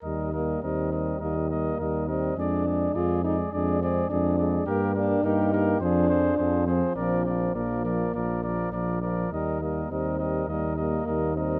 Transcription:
X:1
M:4/4
L:1/8
Q:1/4=103
K:Eb
V:1 name="Cornet"
e e e e e e e e | d d d d d d d d | B B B B c c c c | d d d d d d d d |
e e e e e e e e |]
V:2 name="Trumpet"
B B B B B B B B | A A A A A A A A | G G G G A A A A | B B B B B B B B |
B B B B B B B B |]
V:3 name="French horn"
z B, C2 B, B,2 C | D2 F E D C D2 | z D E2 D3 C | C2 B,4- B, z |
z B, C2 B, B,2 C |]
V:4 name="Euphonium" clef=bass
G, G, G, G, G, G, G, G, | A, A, A, A, A, A, A, A, | B, B, B, B, F, F, F, F, | F, F, F, F, F, F, F, F, |
G, G, G, G, G, G, G, G, |]
V:5 name="Bass trombone" clef=bass
E,,2 E,,2 E,,2 E,,2 | F,,2 F,,2 F,,2 F,,2 | G,,2 G,,2 F,,2 F,,2 | B,,,2 B,,,2 B,,,2 B,,,2 |
E,,2 E,,2 E,,2 E,,2 |]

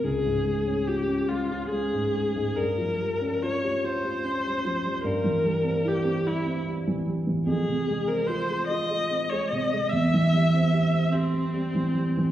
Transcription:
X:1
M:6/8
L:1/16
Q:3/8=49
K:Cphr
V:1 name="Viola"
A4 G2 F2 A4 | B4 d2 c6 | B4 G2 =E2 z4 | A3 B c2 e3 d e2 |
=e6 C6 |]
V:2 name="Grand piano" clef=bass
D,, A,, A, D F D A, D A, A,, A, A,, | G,, F, G, D F G F G D G, F, G, | G,, =E, G, C =E C G, C G, E, G, E, | F,, C, A, C F A F A C A, C, A, |
=E,, =E, G, C G C G C G, E, G, E, |]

